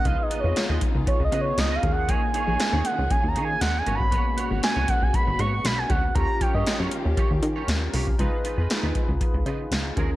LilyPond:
<<
  \new Staff \with { instrumentName = "Analog synth lead" } { \time 4/4 \key cis \mixolydian \tempo 4 = 118 \tuplet 3/2 { eis''8 dis''8 cis''8~ } cis''16 r8. \tuplet 3/2 { cis''8 dis''8 cis''8 dis''8 eis''8 fis''8 } | gis''8 gis''4 fis''8 \tuplet 3/2 { gis''8 ais''8 gis''8 fis''8 gis''8 b''8~ } | b''8. r16 gis''8 fis''16 gis''16 b''16 b''16 cis'''16 cis'''16 b''16 gis''16 fis''8 | ais''8 g''16 dis''8 r2 r8. |
r1 | }
  \new Staff \with { instrumentName = "Clean electric guitar" } { \time 4/4 \key cis \mixolydian <eis' b' dis''>16 r16 <eis' b' dis''>16 <eis' b' dis''>16 r16 <eis' b' dis''>16 r4 <eis' b' dis''>16 r8 <eis' b' dis''>16 r8 | <dis' gis' cis''>16 r16 <dis' gis' cis''>16 <dis' gis' cis''>16 r16 <dis' gis' cis''>16 r4 <dis' gis' cis''>16 r8. <fis' b' cis''>16 r16 | <fis' b' cis''>16 r16 <fis' b' cis''>16 <fis' b' cis''>16 r16 <fis' b' cis''>16 r4 <fis' b' cis''>16 r8. <fis' b' cis''>16 r16 | <eis' g' cis''>16 r16 <eis' g' cis''>16 <eis' g' cis''>16 r16 <eis' g' cis''>16 r8 <eis' g' cis''>16 r8 <eis' g' cis''>16 r8 <eis' g' cis''>16 r16 |
<dis' eis' b'>16 r16 <dis' eis' b'>16 <dis' eis' b'>16 r16 <dis' eis' b'>16 r4 <dis' eis' b'>16 r8. <cis' gis' ais'>16 r16 | }
  \new Staff \with { instrumentName = "Analog polysynth" } { \time 4/4 \key cis \mixolydian <b dis' eis' gis'>2.~ <b dis' eis' gis'>8 <ais cis' eis' gis'>8~ | <ais cis' eis' gis'>2.~ <ais cis' eis' gis'>8 <ais b cis' fis'>8~ | <ais b cis' fis'>1 | <cis' eis' g' a' ais'>1 |
<dis' eis' gis' b'>2.~ <dis' eis' gis' b'>8 <cis' eis' gis' ais'>8 | }
  \new Staff \with { instrumentName = "String section" } { \time 4/4 \key cis \mixolydian <cis b dis' eis'>2.~ <cis b dis' eis'>8 <dis ais cis' gis'>8~ | <dis ais cis' gis'>2.~ <dis ais cis' gis'>8 <b, gis fis'>8~ | <b, gis fis'>1 | <dis cis' eis' g'>1 |
r1 | }
  \new Staff \with { instrumentName = "Analog synth bass" } { \clef bass \time 4/4 \key cis \mixolydian cis,16 r8 eis,16 r16 dis,16 r16 cis,16 r16 cis,16 cis8 cis,8 dis,8~ | dis,16 r8 ais,,16 r16 dis,16 r16 cis,16 r16 dis,16 dis8 dis,8 gis,,8~ | gis,,16 r8 gis,,16 r16 cis,16 r16 b,,16 r16 gis,,16 gis,8 b,,8 d,8 | dis,16 r8 g,16 r16 fis,16 r16 dis,16 r16 dis,16 dis8 dis,8 bis,,8 |
cis,16 r8 eis,16 r16 dis,16 r16 cis,16 r16 cis,16 cis8 cis,8 dis,8 | }
  \new DrumStaff \with { instrumentName = "Drums" } \drummode { \time 4/4 <hh bd>8 hh8 <hh sn>8 <hh bd>8 <hh bd>8 hh8 <hh sn>8 <hh bd>8 | <hh bd>8 hh8 <hh sn>8 hh8 <hh bd>8 hh8 <hh sn>8 hh16 bd16 | <hh bd>8 hh8 <hh sn>8 <hh bd>8 <hh bd>8 hh8 <hh sn>8 <hh bd>8 | <hh bd>8 <hh bd>8 <hh sn>8 hh8 <hh bd>8 hh8 <hh sn>8 hho16 bd16 |
<hh bd>8 hh8 <hh sn>8 <hh bd>8 <hh bd>8 hh8 <hh sn>8 <hh bd>8 | }
>>